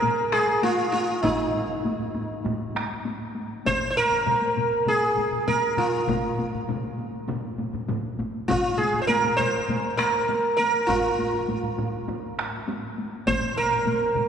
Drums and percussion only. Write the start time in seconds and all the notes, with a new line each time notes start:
0.02 taiko low-mid, taiko high
0.18 taiko high
0.32 taiko rim, taiko high
0.48 taiko high
0.63 taiko high
0.78 taiko high
0.93 taiko high
1.09 taiko high
1.23 taiko, taiko mid, taiko high
1.40 taiko high
1.54 taiko mid, taiko high
1.69 taiko mid, taiko high
1.85 taiko mid, taiko high
2.00 taiko mid, taiko high
2.15 taiko mid, taiko high
2.29 taiko high
2.45 taiko mid, taiko high
2.59 taiko high
2.75 taiko rim, taiko high
2.91 taiko high
3.05 taiko high
3.20 taiko high
3.35 taiko high
3.50 taiko high
3.66 taiko, taiko low-mid, taiko high
3.81 taiko low-mid, taiko high
3.97 taiko low-mid
4.11 taiko low-mid, taiko high
4.27 taiko low-mid, taiko high
4.42 taiko high
4.57 taiko low-mid, taiko high
4.72 taiko high
4.87 taiko low-mid, taiko high
5.03 taiko high
5.17 taiko low-mid, taiko high
5.32 taiko low-mid, taiko high
5.48 taiko low-mid, taiko high
5.63 taiko high
5.77 taiko low-mid, taiko high
5.93 taiko high
6.07 taiko, taiko low-mid, taiko mid, taiko high
6.24 taiko high
6.38 taiko low-mid, taiko mid, taiko high
6.53 taiko low-mid, taiko mid, taiko high
6.68 taiko low-mid, taiko mid, taiko high
6.83 taiko high
6.98 taiko high
7.14 taiko high
7.28 taiko low-mid, taiko mid, taiko high
7.43 taiko high
7.58 taiko low-mid, taiko mid, taiko high
7.73 taiko low-mid, taiko mid, taiko high
7.88 taiko low-mid, taiko mid, taiko high
8.04 taiko high
8.19 taiko, taiko high
8.34 taiko high
8.48 taiko, taiko low-mid, taiko high
8.63 taiko high
8.79 taiko low-mid, taiko high
8.93 taiko low-mid, taiko high
9.09 taiko low-mid, taiko high
9.24 taiko low-mid, taiko high
9.39 taiko low-mid, taiko high
9.55 taiko high
9.69 taiko low-mid, taiko high
9.84 taiko high
9.99 taiko rim, taiko high
10.14 taiko high
10.29 taiko high
10.44 taiko high
10.59 taiko high
10.74 taiko high
10.89 taiko, taiko mid, taiko high
11.04 taiko high
11.19 taiko mid, taiko high
11.33 taiko mid, taiko high
11.48 taiko mid, taiko high
11.63 taiko mid, taiko high
11.78 taiko mid, taiko high
11.93 taiko high
12.08 taiko mid, taiko high
12.23 taiko high
12.39 taiko rim
12.53 taiko high
12.68 taiko high
12.84 taiko high
12.98 taiko high
13.13 taiko high
13.26 taiko, taiko low-mid, taiko high
13.41 taiko low-mid, taiko high
13.56 taiko low-mid, taiko high
13.71 taiko low-mid, taiko high
13.86 taiko low-mid, taiko high
14.01 taiko high
14.15 taiko low-mid, taiko high